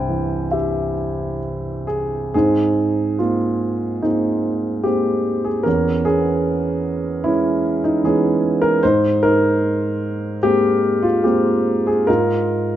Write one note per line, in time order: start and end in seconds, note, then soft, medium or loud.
0.00 2.30 C2 medium
0.00 0.91 G2 soft
0.00 1.39 C3 soft
0.00 2.36 C5 medium
0.00 2.36 G5 medium
0.00 2.35 G#5 medium
0.09 1.86 E3 soft
0.51 1.86 G4 soft
0.51 1.86 E5 medium
1.87 2.33 G#4 medium
2.34 5.62 G#2 medium
2.34 3.20 C4 soft
2.34 4.00 D#4 soft
2.34 3.15 G#4 medium
3.19 4.02 A#3 soft
3.19 4.02 C4 soft
3.19 4.05 F4 medium
4.02 4.82 G#3 soft
4.02 4.83 A#3 soft
4.02 4.83 C4 soft
4.02 4.87 D#4 medium
4.83 5.63 G#3 soft
4.83 5.63 A#3 soft
4.83 5.62 C4 soft
4.83 5.46 G4 medium
5.45 5.64 G#4 medium
5.63 8.79 E2 medium
5.63 6.06 C#4 medium
5.63 6.02 A#4 medium
6.05 7.61 B3 medium
6.05 7.24 C#4 medium
6.05 7.28 G#4 medium
7.24 8.01 E3 soft
7.24 8.01 G#3 soft
7.24 8.03 C#4 medium
7.24 7.79 E4 medium
7.84 8.04 D#4 medium
8.04 8.80 E3 soft
8.04 8.80 G#3 soft
8.04 8.79 B3 medium
8.04 8.81 C#4 medium
8.04 8.59 G#4 medium
8.62 8.83 A#4 medium
8.83 12.05 G#2 medium
8.83 9.22 D#4 medium
8.83 9.20 C5 medium
9.23 10.80 D#4 medium
9.23 10.38 A#4 medium
10.43 11.22 G#3 soft
10.43 11.22 A#3 soft
10.43 11.22 C4 soft
10.43 11.06 G4 medium
11.03 11.24 F4 medium
11.24 12.06 G#3 soft
11.24 12.06 A#3 soft
11.24 12.04 C4 medium
11.24 11.88 G4 medium
11.87 12.09 G#4 medium
12.07 12.76 G#2 medium
12.07 12.76 D#4 medium
12.07 12.76 F4 medium
12.07 12.76 A#4 medium